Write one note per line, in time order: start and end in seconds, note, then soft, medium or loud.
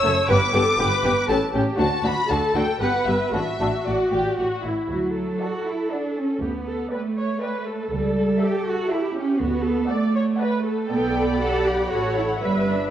0.00 0.12 F#2 medium
0.00 0.12 A3 medium
0.00 0.28 C#5 medium
0.00 0.28 E6 loud
0.04 0.13 F#1 medium
0.04 0.12 A4 medium
0.28 0.37 G1 medium
0.28 0.37 G2 medium
0.28 0.37 B3 medium
0.28 0.37 G4 medium
0.28 0.55 B4 medium
0.28 1.27 D6 loud
0.53 0.62 G1 medium
0.53 0.61 G2 medium
0.53 0.61 B3 medium
0.53 0.62 G4 medium
0.53 0.79 A4 medium
0.79 0.87 G1 medium
0.79 0.87 G2 medium
0.79 0.87 B3 medium
0.79 0.87 G4 medium
0.79 1.29 B4 medium
1.03 1.12 G1 medium
1.03 1.11 G2 medium
1.03 1.12 B3 medium
1.03 1.12 G4 medium
1.28 1.38 A1 medium
1.28 1.36 A2 medium
1.28 1.37 C#4 medium
1.28 1.37 G4 medium
1.28 1.37 A4 medium
1.28 1.54 A5 medium
1.53 1.63 A1 medium
1.53 1.61 A2 medium
1.53 1.62 C#4 medium
1.53 1.79 G4 medium
1.53 1.62 G4 medium
1.78 1.86 D2 medium
1.78 1.88 D2 medium
1.78 1.86 D4 medium
1.78 1.86 F#4 medium
1.78 2.30 F#4 medium
1.78 2.03 A5 medium
2.04 2.12 D2 medium
2.04 2.13 D2 medium
2.04 2.12 D4 medium
2.04 2.12 F#4 medium
2.04 2.30 B5 loud
2.29 2.37 D2 medium
2.29 2.38 D2 medium
2.29 2.38 D4 medium
2.29 2.37 F#4 medium
2.29 2.80 A4 medium
2.29 2.56 A5 medium
2.55 2.63 D2 medium
2.55 2.63 D4 soft
2.55 2.63 F#4 medium
2.55 2.82 G5 medium
2.80 2.89 G1 medium
2.80 2.88 G2 soft
2.80 2.90 B3 soft
2.80 2.89 G4 medium
2.80 3.32 B4 medium
2.80 3.06 F#5 medium
3.06 3.15 G1 medium
3.06 3.14 G2 medium
3.06 3.15 B3 soft
3.06 3.15 G4 soft
3.06 3.32 E5 medium
3.33 3.42 A1 medium
3.33 3.41 A2 medium
3.33 3.41 D4 soft
3.33 4.64 F#4 medium
3.33 3.41 F#4 soft
3.33 3.85 E5 medium
3.59 3.68 A1 soft
3.59 3.67 A2 medium
3.59 3.68 D4 soft
3.59 3.68 F#4 soft
3.85 3.94 A1 medium
3.85 3.93 A2 medium
3.85 4.11 F#4 medium
3.85 4.39 D5 medium
4.12 4.21 A1 medium
4.12 4.20 A2 soft
4.12 4.38 G4 medium
4.38 4.47 A1 medium
4.38 4.46 A2 soft
4.38 4.64 F#4 medium
4.65 4.73 A1 medium
4.65 4.73 A2 medium
4.65 4.91 E4 medium
4.90 5.31 D2 soft
4.90 5.37 F#3 soft
4.90 5.14 F#4 soft
5.16 6.40 A4 soft
5.40 5.66 F#4 medium
5.40 5.79 A4 soft
5.40 5.79 D5 soft
5.40 5.78 F#5 soft
5.66 5.91 E4 medium
5.91 6.17 D4 soft
5.91 6.29 A4 soft
5.91 6.29 D5 soft
5.91 6.29 F#5 soft
6.17 6.42 C#4 medium
6.41 6.81 D2 medium
6.41 6.91 B3 medium
6.41 6.49 G4 soft
6.68 6.92 A4 soft
6.92 7.92 A3 medium
6.92 7.00 B4 soft
6.92 7.30 B4 soft
6.92 7.30 D5 soft
6.92 7.30 G5 soft
7.18 7.42 C#5 soft
7.42 7.67 B4 soft
7.42 7.79 B4 soft
7.42 7.79 D5 soft
7.42 7.80 G5 soft
7.67 8.91 A4 soft
7.93 8.32 C#2 medium
7.93 8.41 G3 medium
8.42 8.67 G4 medium
8.42 8.79 A4 medium
8.42 8.79 E5 soft
8.42 8.79 A5 medium
8.67 8.92 F#4 medium
8.91 9.16 E4 medium
8.91 9.41 G4 medium
8.91 9.28 A4 soft
8.91 9.28 E5 soft
8.91 9.29 A5 medium
9.16 9.40 C#4 medium
9.41 9.80 D2 medium
9.41 9.91 B3 medium
9.41 9.65 F#4 soft
9.66 9.91 A4 medium
9.89 10.88 A3 medium
9.89 10.27 D5 medium
9.89 10.15 D5 medium
9.89 10.27 F#5 medium
9.89 10.28 A5 soft
10.15 10.23 C#5 medium
10.40 10.65 B4 medium
10.40 10.77 D5 medium
10.40 10.77 F#5 medium
10.40 10.78 A5 medium
10.66 11.39 A4 medium
10.90 11.87 B1 medium
10.90 11.40 B3 medium
10.90 11.86 D5 soft
10.90 11.37 G5 soft
10.90 12.38 B5 medium
11.40 11.90 G4 medium
11.40 11.65 A4 medium
11.40 11.90 F#5 medium
11.66 11.91 G4 medium
11.91 12.41 A1 medium
11.91 12.16 F#4 medium
11.91 12.40 A4 medium
11.91 12.41 C#5 soft
11.91 12.40 F#5 soft
12.16 12.24 E4 medium
12.41 12.90 G1 medium
12.41 12.66 G3 medium
12.41 12.90 B4 soft
12.41 12.90 B4 medium
12.41 12.90 E5 soft
12.41 12.90 B5 soft
12.66 12.90 D4 medium